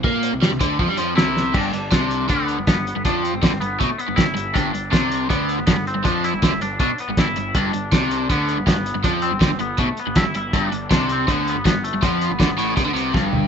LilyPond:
<<
  \new Staff \with { instrumentName = "Clean electric guitar" } { \time 4/4 \key g \mixolydian \tempo 4 = 160 r2. e'4 | d'4 d'4 b4 b4 | d'8 c'4 b8 a8 b8 e'4 | d'4 d'4 b4 b8 c'8 |
d'8 e'4 d'8 d'8 b8 e'4 | d'4 d'4 b4 b4 | d'8 c'4 b8 a8 b8 e'8 e'8 | d'4 d'8 c'8 b8 b8 b8 a8 |
b2.~ b8 r8 | }
  \new Staff \with { instrumentName = "Overdriven electric guitar" } { \clef bass \time 4/4 \key g \mixolydian bes8. c16 g16 c16 d8 f16 g16 f8 c4 | g,8 g,8 c4 d8. g,16 g,16 g,8 g,16 | f8. g,16 d16 g,16 g,8 b,16 r8 g,16 g,16 g,16 g,8 | g,8 g,8 c4 d8. g,16 g,16 g,8 g,16 |
f8. g,16 d16 g,16 g,8 b,16 r8 g,16 g,16 g,16 g,8 | g,8 g,8 c4 d8. g,16 g,16 g,8 g,16 | f8. g,16 d16 g,16 g,8 b,16 r8 g,16 g,16 g,16 g,8 | g,8 g,8 c4 d8. g,16 g,16 g,8 g,16 |
f8. g,16 d16 g,16 a,8 c16 d16 c8 g,4 | }
  \new Staff \with { instrumentName = "Picked electric bass" } { \clef bass \time 4/4 \key g \mixolydian bes,8. c,16 g,16 c,16 d,8 f,16 g,16 f,8 c,4 | g,,8 g,,8 c,4 d,8. g,,16 g,,16 g,,8 g,,16 | f,8. g,,16 d,16 g,,16 g,,8 b,,16 r8 g,,16 g,,16 g,,16 g,,8 | g,,8 g,,8 c,4 d,8. g,,16 g,,16 g,,8 g,,16 |
f,8. g,,16 d,16 g,,16 g,,8 b,,16 r8 g,,16 g,,16 g,,16 g,,8 | g,,8 g,,8 c,4 d,8. g,,16 g,,16 g,,8 g,,16 | f,8. g,,16 d,16 g,,16 g,,8 b,,16 r8 g,,16 g,,16 g,,16 g,,8 | g,,8 g,,8 c,4 d,8. g,,16 g,,16 g,,8 g,,16 |
f,8. g,,16 d,16 g,,16 a,,8 c,16 d,16 c,8 g,,4 | }
  \new DrumStaff \with { instrumentName = "Drums" } \drummode { \time 4/4 bd8 hh8 sn8 <hh bd>8 bd8 hh8 sn8 sn8 | <cymc bd>8 hh8 <hh bd sn>8 hh8 <hh bd>8 hh8 <hh bd sn>8 hh8 | <hh bd>8 hh8 <hh bd sn>8 hh8 <hh bd>8 hh8 <hh bd sn>8 hh8 | <hh bd>8 hh8 <hh bd sn>8 hh8 <hh bd>8 hh8 <hh bd sn>8 hh8 |
<hh bd>8 hh8 <hh bd sn>8 hh8 <hh bd>8 hh8 <hh bd sn>8 hh8 | <hh bd>8 hh8 <hh bd sn>8 hh8 <hh bd>8 hh8 <hh bd sn>8 hh8 | <hh bd>8 hh8 <hh bd sn>8 hh8 <hh bd>8 hh8 <hh bd sn>8 hh8 | <hh bd>8 hh8 <hh bd sn>8 hh8 <hh bd>8 hh8 <hh bd sn>8 hh8 |
<hh bd>8 hh8 <hh bd sn>8 hh8 <hh bd>8 hh8 <bd sn>8 tomfh8 | }
>>